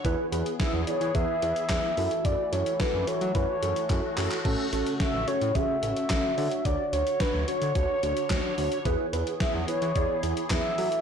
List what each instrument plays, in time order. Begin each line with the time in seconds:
0.05 analog synth bass E2, analog synth pad E3 B3 G#4, tine electric piano E4 G#4 B4, kick, closed hi-hat
0.32 analog synth bass E2, tine electric piano E4 G#4 B4, closed hi-hat
0.46 closed hi-hat
0.60 tine electric piano E4 G#4 B4, soft synth lead E5, kick, snare, closed hi-hat
0.73 analog synth bass E2
0.87 tine electric piano E4 G#4 D5, soft synth lead C#5, closed hi-hat
1.01 analog synth bass E3, closed hi-hat
1.15 analog synth bass E2, tine electric piano E4 G#4 B4, soft synth lead E5, kick, closed hi-hat
1.42 analog synth bass E2, tine electric piano E4 G#4 B4, closed hi-hat
1.56 closed hi-hat
1.69 analog synth bass E2, tine electric piano E4 G#4 B4, kick, snare, clap, closed hi-hat
1.97 analog synth bass F#2, analog synth pad E3 A3 F#4, tine electric piano E4 F#4 A4, open hi-hat
2.11 closed hi-hat
2.25 analog synth bass F#2, soft synth lead D5, kick, closed hi-hat
2.52 analog synth bass F#2, tine electric piano E4 F#4 A4, soft synth lead C#5, closed hi-hat
2.66 closed hi-hat
2.80 tine electric piano E4 F#4 A4, soft synth lead B4, kick, snare, closed hi-hat
2.94 analog synth bass F#2
3.07 tine electric piano E4 F#4 A4, soft synth lead C#5, closed hi-hat
3.21 analog synth bass F#3, closed hi-hat
3.35 analog synth bass F#2, tine electric piano E4 F#4 B4, soft synth lead C#5, kick, closed hi-hat
3.62 analog synth bass F#2, tine electric piano E4 F#4 A4, closed hi-hat
3.76 closed hi-hat
3.90 analog synth bass F#2, tine electric piano E4 F#4 A4, kick, clap, closed hi-hat
4.18 analog synth bass F#2, tine electric piano E4 F#4 A4, clap, open hi-hat
4.31 clap, closed hi-hat
4.45 analog synth bass A1, analog synth pad C#3, tine electric piano C#4 F#4 A4, kick, crash
4.73 analog synth bass A1, tine electric piano C#4 F#4 A4, closed hi-hat
4.86 closed hi-hat
5.00 tine electric piano C#4 F#4 A4, soft synth lead E5, kick, snare, closed hi-hat
5.14 analog synth bass A1
5.28 tine electric piano C#4 F#4 A4, soft synth lead C#5, closed hi-hat
5.41 analog synth bass A2, closed hi-hat
5.55 analog synth bass A1, tine electric piano C#4 F#4 G#4, soft synth lead E5, kick, closed hi-hat
5.83 analog synth bass A1, tine electric piano C#4 F#4 A4, closed hi-hat
5.96 closed hi-hat
6.10 analog synth bass A1, tine electric piano C#4 F#4 A4, kick, snare, clap, closed hi-hat
6.38 analog synth bass D3, analog synth pad D3 C#5, tine electric piano D4 F#4 C#5, open hi-hat
6.51 closed hi-hat
6.65 analog synth bass D2, soft synth lead D5, kick, closed hi-hat
6.93 analog synth bass D2, tine electric piano D4 F#4 C#5, soft synth lead C#5, closed hi-hat
7.07 closed hi-hat
7.20 tine electric piano D4 F#4 C#5, soft synth lead B4, kick, snare, closed hi-hat
7.34 analog synth bass D2
7.48 tine electric piano D4 F#4 C#5, soft synth lead C#5, closed hi-hat
7.62 analog synth bass D3, closed hi-hat
7.75 analog synth bass D2, tine electric piano D4 F#4 C#5, soft synth lead C#5, kick, closed hi-hat
8.03 analog synth bass D2, tine electric piano D4 F#4 C#5, closed hi-hat
8.17 closed hi-hat
8.30 analog synth bass D2, tine electric piano D4 F#4 C#5, kick, snare, clap, closed hi-hat
8.58 analog synth bass D2, tine electric piano D4 F#4 C#5, open hi-hat
8.72 closed hi-hat
8.85 analog synth bass E2, analog synth pad E3 B3 G#4, tine electric piano E4 G#4 B4, kick, closed hi-hat
9.13 analog synth bass E2, tine electric piano E4 G#4 B4, closed hi-hat
9.27 closed hi-hat
9.40 tine electric piano E4 G#4 B4, soft synth lead E5, kick, snare, closed hi-hat
9.54 analog synth bass E2
9.68 tine electric piano E4 G#4 B4, soft synth lead C#5, closed hi-hat
9.82 analog synth bass E3, closed hi-hat
9.96 analog synth bass E2, tine electric piano E4 G#4 D5, kick, closed hi-hat
10.23 analog synth bass E2, tine electric piano E4 G#4 C#5, closed hi-hat
10.37 closed hi-hat
10.50 analog synth bass E2, tine electric piano E4 G#4 B4, soft synth lead E5, kick, snare, clap, closed hi-hat
10.78 analog synth bass F#3, analog synth pad A3 F#4, tine electric piano E4 F#4 A4, open hi-hat
10.92 closed hi-hat